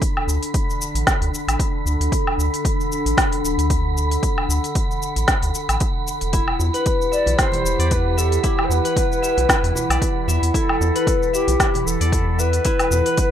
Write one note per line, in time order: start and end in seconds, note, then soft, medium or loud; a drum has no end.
0.00 6.33 D3 medium
0.00 7.06 D4 medium
0.00 6.33 A4 medium
0.00 13.31 F#5 medium
0.00 13.31 B5 medium
0.00 kick loud
0.00 open hi-hat soft
0.00 shaker soft
0.17 low woodblock medium
0.27 0.38 D2 medium
0.27 shaker medium
0.43 open hi-hat soft
0.43 shaker soft
0.54 kick loud
0.54 open hi-hat medium
0.54 shaker soft
0.70 shaker soft
0.81 shaker medium
0.94 1.03 A1 loud
0.94 open hi-hat soft
0.94 shaker soft
1.07 kick loud
1.07 snare medium
1.07 open hi-hat soft
1.07 shaker soft
1.21 1.30 D2 loud
1.21 open hi-hat soft
1.34 shaker medium
1.47 1.56 A1 medium
1.47 open hi-hat soft
1.47 low woodblock medium
1.47 shaker soft
1.59 kick loud
1.59 open hi-hat soft
1.59 shaker soft
1.85 1.96 D2 loud
1.85 shaker medium
2.00 2.09 D2 medium
2.00 open hi-hat soft
2.00 shaker soft
2.12 kick loud
2.12 open hi-hat soft
2.12 shaker soft
2.27 low woodblock medium
2.38 2.49 D2 medium
2.38 shaker medium
2.54 open hi-hat soft
2.54 shaker soft
2.65 kick loud
2.65 open hi-hat medium
2.65 shaker soft
2.81 shaker soft
2.92 shaker medium
3.05 3.14 A1 medium
3.05 open hi-hat soft
3.05 shaker soft
3.17 kick loud
3.17 snare medium
3.17 open hi-hat soft
3.17 shaker soft
3.32 open hi-hat soft
3.43 3.54 D1 medium
3.43 shaker medium
3.58 4.17 D2 medium
3.58 open hi-hat soft
3.58 shaker soft
3.70 kick loud
3.70 open hi-hat medium
3.70 shaker soft
3.98 shaker medium
4.11 open hi-hat soft
4.11 shaker soft
4.23 kick loud
4.23 open hi-hat soft
4.23 shaker soft
4.38 low woodblock medium
4.48 4.59 D2 loud
4.48 shaker medium
4.64 open hi-hat soft
4.64 shaker soft
4.75 kick loud
4.75 open hi-hat medium
4.75 shaker soft
4.91 shaker soft
5.02 shaker medium
5.16 5.25 A1 loud
5.16 open hi-hat soft
5.16 shaker soft
5.28 kick loud
5.28 snare medium
5.28 open hi-hat soft
5.28 shaker soft
5.42 5.51 D2 loud
5.42 open hi-hat soft
5.42 shaker soft
5.55 shaker medium
5.69 5.77 A1 loud
5.69 open hi-hat soft
5.69 low woodblock medium
5.69 shaker soft
5.80 kick loud
5.80 open hi-hat soft
5.80 shaker soft
6.08 shaker medium
6.21 6.54 E1 medium
6.21 open hi-hat soft
6.21 shaker soft
6.33 13.31 E3 medium
6.33 7.38 E4 loud
6.33 kick loud
6.33 open hi-hat soft
6.33 shaker soft
6.44 10.96 G4 medium
6.44 low woodblock medium
6.54 13.31 E4 medium
6.59 6.70 E2 loud
6.59 high bongo medium
6.59 shaker medium
6.74 8.79 B4 medium
6.74 open hi-hat soft
6.74 shaker soft
6.86 kick loud
6.86 open hi-hat medium
6.86 shaker soft
7.02 shaker soft
7.12 7.39 D5 loud
7.12 8.17 E5 medium
7.12 shaker medium
7.26 7.35 B1 loud
7.26 open hi-hat soft
7.26 high bongo medium
7.26 high conga medium
7.26 shaker soft
7.38 8.43 E4 medium
7.38 7.93 C5 loud
7.38 kick loud
7.38 snare medium
7.38 open hi-hat soft
7.38 shaker soft
7.52 open hi-hat soft
7.52 high bongo soft
7.52 high conga medium
7.52 low conga medium
7.64 7.75 E1 medium
7.64 shaker medium
7.79 8.38 E2 loud
7.79 9.64 D5 medium
7.79 open hi-hat soft
7.79 shaker soft
7.91 8.20 B4 medium
7.91 kick loud
7.91 open hi-hat medium
7.91 shaker soft
8.17 8.46 A4 medium
8.17 9.22 E5 medium
8.17 shaker medium
8.32 open hi-hat soft
8.32 shaker soft
8.43 9.48 E4 loud
8.43 8.66 G4 medium
8.43 kick loud
8.43 open hi-hat medium
8.43 shaker soft
8.59 low woodblock medium
8.64 8.72 C5 medium
8.69 8.80 E2 medium
8.69 10.28 B4 loud
8.69 high bongo medium
8.69 shaker medium
8.85 10.90 B4 medium
8.85 open hi-hat soft
8.85 shaker soft
8.96 kick loud
8.96 open hi-hat medium
8.96 shaker soft
9.12 shaker soft
9.22 10.28 E5 medium
9.22 shaker medium
9.37 9.46 B1 medium
9.37 open hi-hat soft
9.37 high bongo medium
9.37 high conga soft
9.37 shaker soft
9.49 10.54 E4 medium
9.49 kick medium
9.49 snare medium
9.49 open hi-hat medium
9.49 shaker soft
9.63 9.72 E2 loud
9.63 open hi-hat soft
9.75 high bongo medium
9.75 high conga medium
9.75 low conga medium
9.75 shaker medium
9.89 9.98 B1 medium
9.89 11.75 D5 medium
9.89 open hi-hat soft
9.89 low woodblock medium
9.89 shaker soft
10.02 kick loud
10.02 open hi-hat medium
10.02 shaker soft
10.27 10.38 E2 loud
10.27 11.33 E5 medium
10.27 high bongo medium
10.27 high conga medium
10.27 shaker medium
10.42 10.51 E2 medium
10.42 open hi-hat soft
10.42 shaker soft
10.54 11.59 E4 loud
10.54 11.29 A4 medium
10.54 kick medium
10.54 open hi-hat medium
10.54 shaker soft
10.69 low woodblock medium
10.79 10.91 E2 loud
10.79 13.31 A4 medium
10.79 high bongo medium
10.79 shaker medium
10.95 13.00 B4 medium
10.95 open hi-hat soft
10.95 shaker soft
11.07 kick loud
11.07 open hi-hat medium
11.07 shaker soft
11.23 shaker soft
11.33 11.88 G4 medium
11.33 12.38 E5 medium
11.33 shaker medium
11.48 11.56 B1 loud
11.48 open hi-hat soft
11.48 high bongo medium
11.48 high conga medium
11.48 shaker soft
11.60 12.65 E4 medium
11.60 kick loud
11.60 snare medium
11.60 open hi-hat medium
11.60 shaker soft
11.74 open hi-hat soft
11.74 high bongo soft
11.74 high conga medium
11.74 low conga medium
11.86 11.96 E1 medium
11.86 12.41 A4 loud
11.86 shaker medium
12.00 12.60 E2 medium
12.00 13.31 D5 medium
12.00 open hi-hat soft
12.00 shaker soft
12.12 kick loud
12.12 open hi-hat medium
12.12 shaker soft
12.39 13.31 B4 loud
12.39 13.31 E5 medium
12.39 shaker medium
12.53 open hi-hat soft
12.53 shaker soft
12.65 13.31 E4 loud
12.65 kick medium
12.65 open hi-hat medium
12.65 shaker soft
12.79 open hi-hat soft
12.79 low woodblock medium
12.91 13.02 E2 loud
12.91 high bongo medium
12.91 low conga medium
12.91 shaker medium
13.06 13.31 B4 medium
13.06 open hi-hat soft
13.06 shaker soft
13.17 kick loud
13.17 open hi-hat medium
13.17 shaker soft